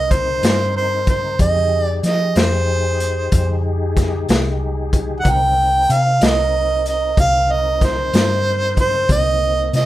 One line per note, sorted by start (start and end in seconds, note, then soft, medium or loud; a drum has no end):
0.00 0.39 C2 medium
0.00 1.36 C4 medium
0.00 1.36 D#4 medium
0.00 1.36 A#4 medium
0.00 0.14 D#5 medium
0.11 0.76 C5 medium
0.11 kick medium
0.11 closed hi-hat medium
0.43 1.35 G2 medium
0.43 snare loud
0.43 closed hi-hat medium
0.77 1.06 C5 medium
1.07 1.38 C5 medium
1.07 kick medium
1.07 closed hi-hat soft
1.39 2.00 F2 loud
1.39 5.21 D#4 medium
1.39 5.21 G4 medium
1.39 5.21 G#4 medium
1.39 1.83 D#5 medium
1.39 kick medium
1.39 closed hi-hat medium
1.83 2.00 D5 medium
2.03 2.33 F3 medium
2.03 2.39 D#5 medium
2.03 snare soft
2.03 closed hi-hat medium
2.35 3.28 F2 medium
2.35 3.65 C5 medium
2.35 snare medium
2.35 closed hi-hat medium
3.00 closed hi-hat medium
3.32 4.24 F2 medium
3.32 kick medium
3.32 closed hi-hat medium
3.97 kick medium
3.97 snare soft
3.97 closed hi-hat medium
4.29 5.21 C2 medium
4.29 snare loud
4.29 closed hi-hat medium
4.93 kick medium
4.93 closed hi-hat medium
5.20 9.05 C4 medium
5.20 9.05 D#4 medium
5.20 9.05 A#4 medium
5.20 5.31 F#5 medium
5.25 5.85 C2 loud
5.25 kick medium
5.25 closed hi-hat medium
5.30 5.94 G5 loud
5.89 6.19 C3 medium
5.89 6.25 F5 medium
5.89 closed hi-hat medium
6.21 7.13 C2 medium
6.21 6.86 D#5 loud
6.21 snare loud
6.21 closed hi-hat medium
6.86 7.17 D#5 medium
6.86 closed hi-hat medium
7.17 8.09 C2 medium
7.17 7.53 F5 medium
7.17 kick medium
7.17 closed hi-hat medium
7.52 7.86 D#5 medium
7.81 8.79 C5 medium
7.81 kick medium
7.81 snare soft
7.81 closed hi-hat medium
8.13 9.06 G2 loud
8.13 snare loud
8.13 closed hi-hat medium
8.77 9.09 C5 medium
8.77 kick medium
8.77 closed hi-hat medium
9.08 9.69 C2 loud
9.08 9.86 A#3 medium
9.08 9.86 C4 medium
9.08 9.86 D#4 medium
9.08 9.71 D#5 medium
9.08 kick loud
9.08 closed hi-hat medium
9.73 9.86 C3 medium
9.73 9.86 D#5 medium
9.73 snare soft
9.73 closed hi-hat medium